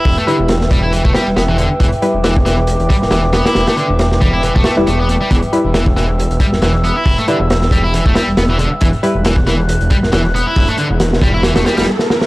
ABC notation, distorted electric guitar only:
X:1
M:4/4
L:1/16
Q:"Swing 16ths" 1/4=137
K:Em
V:1 name="Distorted electric guitar" clef=bass
E A, D, z3 G, E E, A, G, z B, E, D, z | E, z3 E, z E, z3 G, z E, z B, E- | E A, D, z3 G, E E, A, A, z A, B, A, G, | E, z3 E, z E, z3 G, z E, z B, E- |
E A, D, z3 G, E E, A, G, z B, E, D, z | E, z3 E, z E, z3 G, z E, z B, E- | E A, D, z3 G, E E, A, G, G, z4 |]